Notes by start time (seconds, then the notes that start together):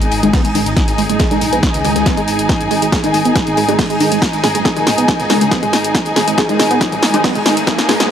Already playing: G#2 D#3 G#3 D#4 G#4 G#5
0.02 G#1, closed hi-hat
0.11 G#1, open hi-hat, ride
0.23 G#1 D#3 G#3 D#4, closed hi-hat
0.33 B3, kick, snare, closed hi-hat, open hi-hat
0.45 G#1 G#3, closed hi-hat
0.55 G#1 D#3 G#3 D#4, open hi-hat, ride
0.66 G#1, closed hi-hat
0.77 kick, snare, closed hi-hat, ride
0.88 G#1, snare, closed hi-hat
0.98 G#1 G#3, open hi-hat, ride
1.09 F#1 G#3, closed hi-hat
1.19 G#4, kick, snare, closed hi-hat, ride
1.31 A#1 D#3 G#3 D#4, snare, closed hi-hat
1.41 A#1 G#3, open hi-hat, ride
1.53 A#1 B3, closed hi-hat, ride
1.63 kick, snare, closed hi-hat, ride
1.74 C#2, snare, closed hi-hat
1.84 C#2 D#3 G#3 D#4, open hi-hat, ride
1.96 C#2 G#3, snare, closed hi-hat
2.06 B3, kick, snare, closed hi-hat, ride
2.17 G#1 G#3, closed hi-hat
2.28 G#1, open hi-hat, ride
2.39 G#1, closed hi-hat
2.49 kick, snare, closed hi-hat, ride
2.61 F#1, closed hi-hat, ride
2.71 G#1 G#3, open hi-hat, ride
2.82 G#1 G#3, closed hi-hat, ride
2.92 G#4, kick, snare, closed hi-hat, ride
3.04 G#1 D#3 G#3 D#4, snare, closed hi-hat
3.14 G#1 G#3, open hi-hat, ride
3.24 G#1 B3, closed hi-hat, ride
3.36 kick, snare, closed hi-hat, ride
3.47 G#1, closed hi-hat
3.57 G#1 G#3, open hi-hat, ride
3.68 G#1 D#3 G#3 D#4, closed hi-hat
3.79 G#3, kick, snare, closed hi-hat, open hi-hat
3.90 G#1 G#3, closed hi-hat
4.00 G#1 D#3 G#3 D#4, open hi-hat, ride
4.12 G#1 G#3, closed hi-hat
4.22 kick, snare, closed hi-hat, ride, riser
4.33 G#1, snare, closed hi-hat
4.43 G#1 G#3, snare, mid tom, open hi-hat, ride
4.55 F#1 G#3, closed hi-hat
4.65 G#4, kick, snare, closed hi-hat, ride
4.76 A#1 D#3 G#3 D#4, snare, closed hi-hat
4.87 A#1 G#3, snare, mid tom, open hi-hat, ride
4.97 A#1 B3, closed hi-hat, ride
5.08 kick, snare, closed hi-hat, ride
5.19 C#2, snare, closed hi-hat, mid tom
5.30 C#2 D#3 G#3 D#4, snare, open hi-hat, ride
5.41 C#2 G#3, snare, closed hi-hat
5.51 B3, kick, snare, closed hi-hat, ride
5.63 G#1 G#3, closed hi-hat, mid tom
5.73 G#1, snare, open hi-hat, ride
5.84 G#1, closed hi-hat
5.95 kick, snare, closed hi-hat, ride
6.05 F#1, closed hi-hat, ride
6.16 G#1 G#3, snare, mid tom, open hi-hat, ride
6.27 G#1 G#3, closed hi-hat, ride
6.38 G#4, kick, snare, closed hi-hat, ride
6.48 G#1 D#3 G#3 D#4, snare, closed hi-hat
6.59 G#1 G#3, snare, mid tom, open hi-hat, ride
6.71 G#1 B3, closed hi-hat, ride
6.81 kick, snare, closed hi-hat, ride
6.92 G#1, closed hi-hat, mid tom
7.03 G#1, snare, open hi-hat, ride
7.14 G#1 D#3 G#3 D#4, closed hi-hat
7.24 B3, kick, snare, closed hi-hat, open hi-hat
7.35 G#1 G#3, closed hi-hat, mid tom
7.46 G#1 D#3 G#3 D#4, snare, open hi-hat, ride
7.57 G#1, closed hi-hat
7.67 kick, snare, closed hi-hat, ride
7.78 G#1, snare, closed hi-hat
7.89 G#1 G#3, snare, mid tom, open hi-hat, ride
8.00 F#1 G#3, snare, closed hi-hat